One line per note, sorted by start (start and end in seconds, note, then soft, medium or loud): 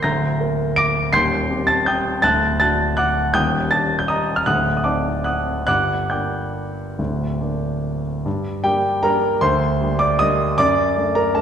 0.03 0.39 D1 medium
0.03 0.39 D2 medium
0.03 0.73 A#5 medium
0.03 0.73 G6 medium
0.03 0.76 A#6 loud
0.40 1.09 A#3 soft
0.40 1.10 A#4 soft
0.76 1.11 D6 medium
0.76 1.11 A#6 medium
0.76 1.13 D7 loud
1.13 1.48 D#1 medium
1.13 1.48 D#2 medium
1.13 1.64 C6 medium
1.13 1.64 G6 medium
1.13 1.68 C7 loud
1.50 2.20 C4 medium
1.50 2.20 G4 medium
1.67 1.86 A5 medium
1.67 1.86 A6 loud
1.86 2.21 G5 medium
1.86 2.21 D#6 medium
1.86 2.23 G6 medium
2.22 2.59 D1 medium
2.22 2.59 D2 medium
2.22 2.57 A5 medium
2.22 2.58 F#6 medium
2.22 2.58 A6 loud
2.60 3.31 D4 medium
2.60 3.31 F#4 medium
2.60 2.95 A5 medium
2.60 2.95 F#6 medium
2.60 2.97 A6 loud
2.97 3.32 F#5 medium
2.97 3.32 D6 medium
2.97 3.34 F#6 loud
3.34 3.70 D#1 medium
3.34 3.71 D#2 medium
3.34 3.69 G5 medium
3.34 3.69 D#6 medium
3.34 3.71 G6 loud
3.71 4.42 D4 medium
3.71 4.42 G4 medium
3.71 3.98 A5 medium
3.71 3.99 A6 loud
3.99 4.09 G6 medium
4.08 4.35 D#5 medium
4.08 4.35 A#5 medium
4.08 4.37 D#6 loud
4.36 4.46 F6 medium
4.46 4.83 D1 medium
4.46 4.83 D2 medium
4.46 4.75 F#5 medium
4.46 4.75 D#6 medium
4.46 4.77 F#6 loud
4.77 4.84 D#6 medium
4.84 5.63 C4 soft
4.84 5.63 D#4 soft
4.84 5.22 D5 medium
4.84 5.22 A5 medium
4.84 5.25 D6 medium
5.24 5.64 F#5 medium
5.24 5.64 D#6 medium
5.24 5.65 F#6 medium
5.67 6.09 G1 medium
5.67 6.09 G2 medium
5.67 6.08 F#5 medium
5.67 6.08 D6 medium
5.67 6.10 F#6 loud
6.10 6.95 A#3 soft
6.10 6.95 D4 soft
6.10 8.01 G5 soft
6.10 8.01 D6 medium
6.10 8.05 G6 medium
6.99 7.40 D1 medium
6.99 7.40 D2 medium
7.41 8.21 A#3 soft
7.41 8.22 D4 soft
8.26 8.64 G2 medium
8.64 9.00 G3 medium
8.64 9.00 A#3 soft
8.64 9.00 D4 medium
8.64 9.01 G4 medium
8.64 9.03 G5 medium
9.03 9.38 G3 medium
9.03 9.38 A#3 medium
9.03 9.39 D4 medium
9.03 9.39 A#4 medium
9.03 9.42 A#5 loud
9.41 9.79 D2 medium
9.41 9.96 C5 medium
9.41 9.99 C6 loud
9.81 10.16 G3 medium
9.81 10.16 A#3 medium
9.81 10.16 D4 medium
9.99 10.18 D5 medium
9.99 10.19 D6 loud
10.19 10.54 G3 medium
10.19 10.54 A#3 medium
10.19 10.55 D4 medium
10.19 10.56 D#5 medium
10.19 10.58 D#6 loud
10.58 10.95 F#2 medium
10.58 11.12 D5 medium
10.58 11.15 D6 loud
10.97 11.31 A3 soft
10.97 11.31 D4 medium
11.15 11.34 A#4 medium
11.15 11.34 A#5 loud
11.35 11.41 A3 medium
11.35 11.41 D4 medium
11.35 11.41 A4 medium
11.35 11.41 A5 medium